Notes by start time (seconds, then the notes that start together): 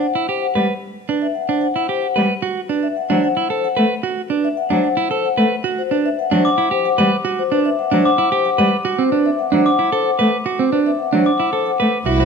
0.01 F#5
0.15 E4
0.28 G4 C5
0.41 F#5
0.55 G3 B4
1.09 D4 B4
1.22 E5
1.35 F#5
1.49 D4 C5
1.61 F#5
1.76 E4
1.89 G4 C5
2.02 F#5
2.16 G3 B4
2.42 F#4
2.69 D4 B4
2.83 E5
2.97 F#5
3.10 F#3 D4 C5
3.24 F#5
3.37 E4
3.50 A4 C5
3.64 F#5
3.77 A3 B4
4.03 F#4
4.30 D4 B4
4.44 E5
4.57 F#5
4.70 F#3 D4 C5
4.84 F#5
4.97 E4
5.11 A4 C5
5.25 F#5
5.38 A3 B4
5.64 F#4
5.78 C5
5.91 D4 B4
6.05 E5
6.19 F#5
6.31 F#3 D4 C5
6.45 F#5 D6
6.58 E4
6.71 G4 C5
6.85 F#5
6.98 G3 B4
7.25 F#4
7.39 C5
7.52 D4 B4
7.65 E5
7.79 F#5
7.91 F#3 D4 C5
8.05 F#5 D6
8.18 E4
8.32 G4 C5
8.45 F#5
8.58 G3 B4
8.85 F#4
8.99 C4 C5
9.12 D4 B4
9.26 E5
9.39 F#5
9.52 F#3 D4 C5
9.65 F#5 D6
9.79 E4
9.92 A4 C5
10.06 F#5
10.19 A3 B4
10.46 F#4
10.59 C4 C5
10.72 D4 B4
10.86 E5
10.99 F#5
11.12 F#3 D4 C5
11.25 F#5 D6
11.40 E4
11.53 A4 C5
11.66 F#5
11.80 A3 B4
12.06 C2 E4 F#4 B4 E5
12.19 F#4 C5